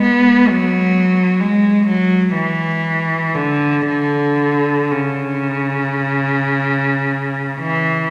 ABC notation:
X:1
M:4/4
L:1/8
Q:1/4=58
K:C#m
V:1 name="Cello" clef=bass
B, F,2 G, F, E,2 =D, | =D,2 C,4- C, E, |]